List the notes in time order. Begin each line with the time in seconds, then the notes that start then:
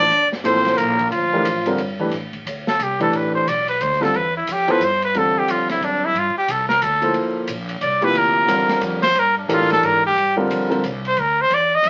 Already playing: D4 D5
0.10 G1, ride
0.32 snare
0.44 A1 F3 A#3 C4 E4 A4 C5, hi-hat pedal, ride
0.56 snare
0.65 snare, ride
0.77 A#1 A#3 A#4, hi-hat pedal, ride
0.99 kick, ride
1.11 D2 F3 F4, ride
1.32 E3 A3 D4 G4 A#4
1.45 A2, hi-hat pedal, ride
1.66 D3 G3 C4 F4 A#4, ride
1.78 G2, ride
1.99 E3 A3 D4 G4 B4, kick
2.11 A2, snare, ride
2.33 kick, ride
2.45 D2, hi-hat pedal, ride
2.67 A4, snare
2.79 C2 G4, hi-hat pedal, ride
3.00 E3 A3 D4 G4 A4 B4, kick, ride
3.13 A1, ride
3.17 B4
3.35 C5
3.47 B1 D5, hi-hat pedal, ride
3.68 B4, ride
3.81 D2 C5, hi-hat pedal, ride
3.93 snare
4.00 D3 G3 C4 F4 A4, snare, ride
4.14 E2 B4, ride
4.37 E4
4.47 F2, hi-hat pedal, ride
4.52 G4
4.67 F3 B3 E4 A4 B4 C5, kick, ride
4.80 G2, hi-hat pedal, ride
4.84 C5
5.02 B4, ride
5.14 E2 D3 G3 C4 F4 A4, ride
5.39 G4
5.47 F2 F4, hi-hat pedal, ride
5.69 E4, snare, ride
5.81 F#2 D4, ride
6.05 E4
6.14 G2, ride
6.19 F4
6.38 G4
6.48 C2 A4, hi-hat pedal, ride
6.69 A#4, snare
6.81 D2 A4, hi-hat pedal, ride
7.01 F3 A#3 E4 A4 C5, ride
7.14 G1, ride
7.47 A#1, hi-hat pedal, ride
7.69 ride
7.81 C2 D5, hi-hat pedal, ride
8.01 C3 F3 A#3 E4 G4 B4, ride
8.13 D2, ride
8.18 A#4
8.46 E2 D3 G3 C4 F4 A#4, hi-hat pedal, ride
8.69 snare, ride
8.81 F2, hi-hat pedal, ride
9.03 C5, snare, ride
9.15 G2 A#4, ride
9.38 D4
9.48 A2 E3 D4 G4 A4 A#4, hi-hat pedal, ride
9.53 F4
9.61 snare
9.70 A4, snare, ride
9.82 G#2 A#4, ride
10.06 G4
10.16 G2, ride
10.36 D3 G3 C4 F4 A#4
10.50 F2, hi-hat pedal, ride
10.70 D3 G3 C4 F4 A#4, ride
10.84 C2, hi-hat pedal, ride
11.05 C5, ride
11.17 D2 A#4, ride
11.41 C5
11.49 E2, ride
11.54 D5
11.75 D#5
11.83 F2, hi-hat pedal, ride